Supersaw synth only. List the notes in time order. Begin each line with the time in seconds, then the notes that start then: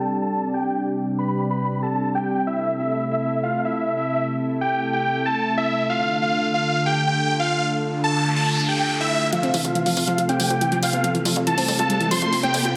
0.00 A5
0.22 A5
0.54 G5
1.19 B5
1.51 B5
1.83 A5
2.15 G5
2.47 E5
2.79 E5
3.11 E5
3.43 F5
3.65 E5
3.97 E5
4.61 G5
4.93 G5
5.26 A5
5.57 E5
5.90 F5
6.22 F5
6.54 F5
6.86 G5
7.07 G5
7.40 F5
8.04 A5
8.36 A5
8.68 G5
9.00 E5
9.33 F5
9.65 F5
9.97 F5
10.29 G5
10.50 G5
10.82 F5
11.47 A5
11.79 A5
12.11 C6
12.43 G5